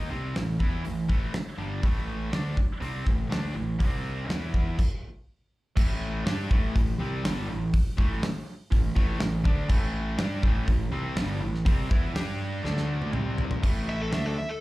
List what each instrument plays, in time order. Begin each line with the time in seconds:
Already playing: distorted electric guitar A#3 D#4
0.10 picked electric bass C2, distorted electric guitar C3 G3 C4
0.35 picked electric bass A1, distorted electric guitar A2 E3, snare, open hi-hat
0.59 picked electric bass E2, distorted electric guitar E3 B3 E4, kick
0.84 picked electric bass A1, distorted electric guitar A2 E3, open hi-hat
1.08 picked electric bass A1, distorted electric guitar A2 E3 A3, kick
1.34 muted distorted electric guitar stroke, muted picked electric bass stroke, snare, open hi-hat
1.58 picked electric bass G1, distorted electric guitar G2 D3 G3
1.82 picked electric bass A1, distorted electric guitar A2 E3 A3, kick, open hi-hat
2.32 picked electric bass D2, distorted electric guitar D3 A3 D4, snare, open hi-hat
2.56 muted distorted electric guitar stroke, muted picked electric bass stroke, kick
2.80 picked electric bass C2, distorted electric guitar C3 G3 C4, open hi-hat
3.05 picked electric bass A1, distorted electric guitar A2 E3, kick
3.30 picked electric bass D2, distorted electric guitar D3 A3 D4, snare, open hi-hat
3.55 picked electric bass A1, distorted electric guitar A2 E3
3.79 picked electric bass C2, distorted electric guitar C3 G3 C4, kick, open hi-hat
4.28 picked electric bass E2, distorted electric guitar E3 B3 E4, snare, open hi-hat
4.54 kick
4.79 kick, crash
5.76 picked electric bass A1, distorted electric guitar A2 E3 A3, kick, crash
6.25 picked electric bass G2, distorted electric guitar G3 D4 G4, snare, open hi-hat
6.50 picked electric bass A1, distorted electric guitar A2 E3 A3, kick
6.75 picked electric bass A1, distorted electric guitar A2 E3, kick, open hi-hat
6.99 picked electric bass C2, distorted electric guitar C3 G3 C4
7.24 picked electric bass G1, distorted electric guitar G2 D3 G3, snare, open hi-hat
7.48 picked electric bass A1, distorted electric guitar A2 E3
7.74 kick, open hi-hat
7.97 picked electric bass A1, distorted electric guitar A2 E3 A3, kick
8.23 snare, open hi-hat
8.71 picked electric bass A1, distorted electric guitar A2 E3, kick, open hi-hat
8.95 picked electric bass A1, distorted electric guitar A2 E3 A3, kick
9.20 picked electric bass A1, distorted electric guitar A2 E3, snare, open hi-hat
9.44 picked electric bass D2, distorted electric guitar D3 A3 D4, kick
9.69 picked electric bass A1, distorted electric guitar A2 E3 A3, kick, crash
10.18 picked electric bass G2, distorted electric guitar G3 D4 G4, snare, open hi-hat
10.43 picked electric bass A1, distorted electric guitar A2 E3 A3, kick
10.67 picked electric bass A1, distorted electric guitar A2 E3, kick, open hi-hat
10.91 picked electric bass C2, distorted electric guitar C3 G3 C4
11.16 picked electric bass G1, distorted electric guitar G2 D3 G3, snare, open hi-hat
11.41 picked electric bass A1, distorted electric guitar A2 E3
11.54 snare
11.65 picked electric bass C2, distorted electric guitar C3 G3 C4, kick, open hi-hat
11.90 picked electric bass E2, distorted electric guitar E3 B3 E4, kick
12.14 picked electric bass G2, distorted electric guitar G3 D4 G4, snare, open hi-hat
12.63 picked electric bass D2, distorted electric guitar D3 A3 D4, snare
12.77 snare
13.02 high tom
13.13 picked electric bass C2, distorted electric guitar C3 G3 C4, mid tom
13.38 floor tom
13.51 floor tom
13.62 picked electric bass A1, distorted electric guitar A2 E3 A3, kick, crash
13.89 lead electric guitar E5
14.02 lead electric guitar A4
14.11 picked electric bass D2, distorted electric guitar D3 A3 D4, lead electric guitar E5, snare, open hi-hat
14.25 lead electric guitar A4
14.36 lead electric guitar E5, muted distorted electric guitar stroke, muted picked electric bass stroke
14.49 lead electric guitar A4